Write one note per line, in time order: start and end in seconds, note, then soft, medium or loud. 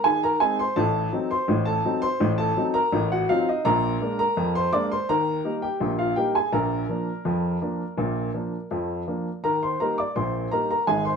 0.04 0.35 D#2 medium
0.04 0.35 D#3 medium
0.04 0.22 G#4 medium
0.04 0.22 G#5 medium
0.23 0.40 A#4 medium
0.23 0.41 A#5 medium
0.40 0.60 G#3 soft
0.40 0.61 C4 soft
0.40 0.61 D#4 medium
0.40 0.58 G#4 medium
0.40 0.58 G#5 medium
0.59 0.76 C5 medium
0.59 0.77 C6 medium
0.76 1.07 A1 medium
0.76 1.07 A2 medium
0.76 1.27 A4 medium
0.76 1.28 A5 medium
1.13 1.32 F#3 soft
1.13 1.33 C4 soft
1.13 1.33 D#4 medium
1.31 1.64 C5 medium
1.31 1.65 C6 medium
1.48 1.79 A1 medium
1.48 1.79 A2 medium
1.65 2.00 A4 medium
1.65 2.00 A5 medium
1.85 2.05 F#3 medium
1.85 2.05 C4 medium
1.85 2.05 D#4 medium
2.02 2.36 C5 medium
2.02 2.31 C6 loud
2.20 2.51 A1 medium
2.20 2.51 A2 medium
2.38 2.72 A4 medium
2.38 2.67 A5 medium
2.57 2.77 F#3 medium
2.57 2.76 C4 soft
2.57 2.77 D#4 medium
2.74 3.08 A#4 medium
2.74 3.08 A#5 medium
2.93 3.23 A1 medium
2.93 3.23 A2 medium
3.12 3.28 F#4 medium
3.12 3.29 F#5 medium
3.29 3.49 F#3 medium
3.29 3.49 C4 medium
3.29 3.48 D#4 medium
3.29 3.46 F4 medium
3.29 3.47 F5 medium
3.49 3.65 D#4 medium
3.49 3.66 D#5 medium
3.65 3.95 A#1 medium
3.65 3.95 A#2 medium
3.65 4.15 A#4 medium
3.65 4.16 A#5 loud
4.01 4.21 G#3 soft
4.01 4.21 A#3 medium
4.01 4.21 D4 medium
4.19 4.53 A#4 medium
4.19 4.53 A#5 medium
4.37 4.67 F2 medium
4.37 4.67 F3 medium
4.55 4.73 C5 medium
4.55 4.73 C6 medium
4.72 4.92 G#3 soft
4.72 4.93 A#3 medium
4.72 4.93 D4 medium
4.72 4.90 D5 medium
4.72 4.90 D6 medium
4.92 5.08 C5 medium
4.92 5.09 C6 medium
5.09 5.39 D#2 medium
5.09 5.39 D#3 medium
5.09 5.59 A#4 medium
5.09 5.52 A#5 medium
5.44 5.64 G3 soft
5.44 5.64 A#3 soft
5.44 5.65 D#4 medium
5.62 5.97 G4 medium
5.62 5.91 G5 medium
5.80 6.11 A#1 medium
5.80 6.11 A#2 medium
5.99 6.16 F4 medium
5.99 6.17 F5 medium
6.16 6.36 G3 soft
6.16 6.37 A#3 soft
6.16 6.37 D#4 soft
6.16 6.34 G4 medium
6.16 6.34 G5 medium
6.35 6.52 G#4 medium
6.35 6.53 G#5 medium
6.52 6.83 A#1 medium
6.52 6.83 A#2 medium
6.52 8.67 A#4 medium
6.52 8.66 A#5 medium
6.89 7.09 F3 soft
6.89 7.09 A#3 soft
6.89 7.09 D4 soft
7.25 7.56 F2 medium
7.25 7.56 F3 medium
7.61 7.81 F3 soft
7.61 7.82 A#3 soft
7.61 7.82 D4 medium
7.98 8.28 A#1 medium
7.98 8.28 A#2 medium
8.34 8.54 F3 soft
8.34 8.54 A#3 soft
8.34 8.54 D4 soft
8.71 9.01 F2 medium
8.71 9.01 F3 medium
9.07 9.27 F3 soft
9.07 9.27 A#3 soft
9.07 9.27 D4 soft
9.44 9.74 D#2 medium
9.44 9.74 D#3 medium
9.44 9.61 A#4 medium
9.44 9.61 A#5 medium
9.63 9.80 C5 soft
9.63 9.80 C6 medium
9.80 10.00 G3 soft
9.80 10.00 A#3 soft
9.80 10.01 D#4 soft
9.80 9.97 A#4 medium
9.80 9.98 A#5 medium
9.98 10.15 D5 medium
9.98 10.16 D6 medium
10.16 10.46 A#1 medium
10.16 10.46 A#2 medium
10.16 10.50 C5 soft
10.16 10.50 C6 medium
10.52 10.72 G3 soft
10.52 10.72 A#3 soft
10.52 10.72 D#4 soft
10.52 10.69 A#4 medium
10.52 10.69 A#5 medium
10.71 10.88 A#4 medium
10.71 10.88 A#5 medium
10.87 11.16 G#1 medium
10.87 11.16 G#2 medium
10.87 11.05 G#4 medium
10.87 11.06 G#5 medium
11.05 11.16 C5 medium
11.05 11.16 C6 medium